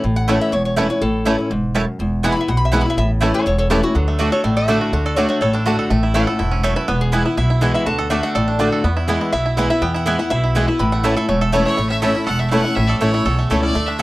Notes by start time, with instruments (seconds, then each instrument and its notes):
0.04 upright bass A1, steel-string acoustic guitar A2
0.16 resonator guitar played with a steel bar F#5
0.28 steel-string acoustic guitar E3 A3 C#4 E4, mandolin A3 E4 C#5 A5, five-string banjo A3 C#4 E4
0.41 resonator guitar played with a steel bar E5
0.52 upright bass E1, steel-string acoustic guitar E2, resonator guitar played with a steel bar C#5
0.65 resonator guitar played with a steel bar C#5
0.76 steel-string acoustic guitar E3 A3 C#4 E4, mandolin A3 E4 C#5 A5, five-string banjo A3 C#4 E4, resonator guitar played with a steel bar B4
0.89 steel-string acoustic guitar E4, resonator guitar played with a steel bar C#5
1.01 upright bass A1, steel-string acoustic guitar A2, resonator guitar played with a steel bar A4
1.25 steel-string acoustic guitar E3 A3 C#4 E4, mandolin A3 E4 C#5 A5, five-string banjo A3 C#4 E4
1.38 steel-string acoustic guitar C#4 E4
1.50 upright bass E1, steel-string acoustic guitar G#2
1.75 steel-string acoustic guitar F#2, mandolin A3 E4 C#5 A5, five-string banjo A3 C#4 E4
1.99 upright bass E1, steel-string acoustic guitar E2
2.23 steel-string acoustic guitar E3 G#3 B3 E4, mandolin B3 E4 B4 G#5, five-string banjo B3 E4, resonator guitar played with a steel bar F#5
2.32 resonator guitar played with a steel bar B5
2.37 steel-string acoustic guitar B3 E4, resonator guitar played with a steel bar E5
2.48 upright bass B1, steel-string acoustic guitar B2, resonator guitar played with a steel bar F#5
2.57 resonator guitar played with a steel bar B5
2.65 resonator guitar played with a steel bar E5
2.72 steel-string acoustic guitar E3 G#3 B3 E4, mandolin B3 E4 B4 G#5, five-string banjo B3 E4, resonator guitar played with a steel bar F#5
2.81 resonator guitar played with a steel bar B5
2.85 steel-string acoustic guitar B3 E4
2.90 resonator guitar played with a steel bar E5
2.97 upright bass A1, steel-string acoustic guitar A2, resonator guitar played with a steel bar E5
3.21 steel-string acoustic guitar E3 A3 C#4 E4, mandolin A3 E4 C#5 A5, five-string banjo A3 C#4 E4
3.34 resonator guitar played with a steel bar A4 C#5
3.46 upright bass E1, steel-string acoustic guitar E2, resonator guitar played with a steel bar A4 C#5
3.58 resonator guitar played with a steel bar A4 C#5
3.70 steel-string acoustic guitar E3 A3 C#4 E4, mandolin A3 E4 C#5 A5, five-string banjo A3 C#4 E4, resonator guitar played with a steel bar G4 B4
3.83 steel-string acoustic guitar C#4 E4, resonator guitar played with a steel bar F#4
3.95 upright bass D2, steel-string acoustic guitar D3, five-string banjo F#3
4.08 five-string banjo A3
4.19 steel-string acoustic guitar D3 A3 D4 F#4, mandolin A3 F#4 D5 A5, five-string banjo F#4
4.32 steel-string acoustic guitar D4 F#4, five-string banjo A4, resonator guitar played with a steel bar C#5
4.44 upright bass A1, steel-string acoustic guitar A2, five-string banjo A3, resonator guitar played with a steel bar D5
4.57 five-string banjo A4, resonator guitar played with a steel bar E5
4.68 steel-string acoustic guitar D3 A3 D4 F#4, mandolin A3 F#4 D5 A5, five-string banjo A3
4.81 five-string banjo F#4
4.92 upright bass D2, steel-string acoustic guitar D3, five-string banjo F#4
5.06 five-string banjo A4, resonator guitar played with a steel bar D5
5.16 steel-string acoustic guitar D3 A3 D4 F#4, mandolin A3 F#4 D5 A5, five-string banjo F#4, resonator guitar played with a steel bar C#5
5.28 five-string banjo A3, resonator guitar played with a steel bar C#5
5.41 upright bass A1, steel-string acoustic guitar A2, five-string banjo A4, resonator guitar played with a steel bar C#5
5.53 five-string banjo D4, resonator guitar played with a steel bar A4
5.65 steel-string acoustic guitar D3 A3 D4 F#4, mandolin A3 F#4 D5 A5, five-string banjo F#4
5.79 five-string banjo A4
5.90 upright bass A1, steel-string acoustic guitar A2, five-string banjo A3
6.03 five-string banjo E4
6.14 steel-string acoustic guitar E3 A3 C#4 E4, mandolin A3 E4 C#5 A5, five-string banjo A3, resonator guitar played with a steel bar F#5
6.27 steel-string acoustic guitar C#4 E4, five-string banjo A4
6.39 upright bass E1, steel-string acoustic guitar G#2, five-string banjo E4
6.51 five-string banjo C#4
6.63 steel-string acoustic guitar F#2, mandolin A3 E4 C#5 A5, five-string banjo A4, resonator guitar played with a steel bar C#5
6.76 five-string banjo E4, resonator guitar played with a steel bar B4
6.88 upright bass E1, steel-string acoustic guitar E2, five-string banjo B3, resonator guitar played with a steel bar B4
7.01 resonator guitar played with a steel bar G#4
7.12 steel-string acoustic guitar E3 G#3 B3 E4, mandolin B3 E4 B4 G#5, five-string banjo B3
7.25 steel-string acoustic guitar B3 E4, five-string banjo E4
7.37 upright bass B1, steel-string acoustic guitar B2, five-string banjo E4, resonator guitar played with a steel bar E5
7.50 five-string banjo E4
7.61 steel-string acoustic guitar E3 G#3 B3 E4, mandolin B3 E4 B4 G#5, five-string banjo E4
7.74 five-string banjo E4, resonator guitar played with a steel bar E5
7.86 upright bass D2, steel-string acoustic guitar D3, five-string banjo F#4, resonator guitar played with a steel bar A5
7.98 five-string banjo A4, resonator guitar played with a steel bar F#5
8.10 steel-string acoustic guitar D3 A3 D4 F#4, mandolin A3 F#4 D5 A5, five-string banjo F#4, resonator guitar played with a steel bar E5
8.23 five-string banjo A3, resonator guitar played with a steel bar F#5
8.35 upright bass A1, steel-string acoustic guitar A2, five-string banjo A4, resonator guitar played with a steel bar D5
8.48 five-string banjo D4
8.59 steel-string acoustic guitar D3 A3 D4 F#4, mandolin A3 F#4 D5 A5, five-string banjo F#4
8.72 five-string banjo A4
8.84 upright bass E2, steel-string acoustic guitar E2, five-string banjo B3
8.97 five-string banjo E4
9.08 steel-string acoustic guitar E3 G#3 B3 E4, mandolin B3 E4 B4 G#5, five-string banjo B3
9.21 five-string banjo E4
9.32 upright bass B1, steel-string acoustic guitar B2, five-string banjo E4, resonator guitar played with a steel bar E5
9.46 five-string banjo E4
9.57 steel-string acoustic guitar E3 G#3 B3 E4, mandolin B3 E4 B4 G#5, five-string banjo E4
9.70 steel-string acoustic guitar B3 E4, five-string banjo E4, resonator guitar played with a steel bar E5
9.82 upright bass E2, steel-string acoustic guitar E2, five-string banjo B3, resonator guitar played with a steel bar G5
9.94 five-string banjo E4, resonator guitar played with a steel bar F#5
10.06 steel-string acoustic guitar E3 G#3 B3 E4, mandolin B3 E4 B4 G#5, five-string banjo B3, resonator guitar played with a steel bar E5
10.19 steel-string acoustic guitar B3 E4, five-string banjo E4, resonator guitar played with a steel bar F#5
10.30 upright bass B1, steel-string acoustic guitar B2, five-string banjo E4, resonator guitar played with a steel bar E5
10.44 five-string banjo E4
10.55 steel-string acoustic guitar E3 G#3 B3 E4, mandolin B3 E4 B4 G#5, five-string banjo E4
10.68 steel-string acoustic guitar B3 E4, five-string banjo E4
10.79 upright bass A1, steel-string acoustic guitar A2, five-string banjo E3, resonator guitar played with a steel bar B5
10.92 five-string banjo A3, resonator guitar played with a steel bar F#5
11.03 steel-string acoustic guitar E3 A3 C#4 E4, mandolin A3 E4 C#5 A5, five-string banjo E4
11.16 steel-string acoustic guitar C#4 E4, five-string banjo A4, resonator guitar played with a steel bar E5
11.28 upright bass E1, steel-string acoustic guitar E2, five-string banjo A3, resonator guitar played with a steel bar C#5
11.41 five-string banjo A4, resonator guitar played with a steel bar E5
11.52 steel-string acoustic guitar E3 A3 C#4 E4, mandolin A3 E4 C#5 A5, five-string banjo A3, fiddle A4, resonator guitar played with a steel bar C#5
11.65 five-string banjo E4, fiddle C#5
11.77 upright bass A1, steel-string acoustic guitar A2, five-string banjo A3
11.90 five-string banjo C#4, fiddle E5
12.02 steel-string acoustic guitar E3 A3 C#4 E4, mandolin A3 E4 C#5 A5, five-string banjo A4, fiddle E5
12.15 steel-string acoustic guitar C#4 E4, five-string banjo E4
12.26 upright bass E1, steel-string acoustic guitar E2, five-string banjo A4, fiddle F#5
12.39 five-string banjo A3, fiddle E5
12.51 steel-string acoustic guitar E3 A3 C#4 E4, mandolin A3 E4 C#5 A5, five-string banjo E4, fiddle F#5
12.64 five-string banjo A3, steel-string acoustic guitar C#4 E4
12.75 upright bass A1, steel-string acoustic guitar A2, five-string banjo C#4, fiddle E5
12.88 five-string banjo A4, fiddle D5
13.00 upright bass A1, steel-string acoustic guitar E3 A3 C#4 E4, mandolin A3 E4 C#5 A5, five-string banjo E4, fiddle C#5
13.13 five-string banjo A3, steel-string acoustic guitar C#4 E4
13.26 upright bass B1, steel-string acoustic guitar E2, five-string banjo A4
13.39 five-string banjo A3
13.49 upright bass C#2, steel-string acoustic guitar E3 A3 C#4 E4, mandolin A3 E4 C#5 A5, fiddle A4, five-string banjo A4
13.62 five-string banjo C#4, steel-string acoustic guitar C#4 E4, fiddle D5
13.75 upright bass D2, steel-string acoustic guitar D3, five-string banjo A3
13.86 five-string banjo D4, fiddle E5
13.98 steel-string acoustic guitar D3, mandolin A3, fiddle E5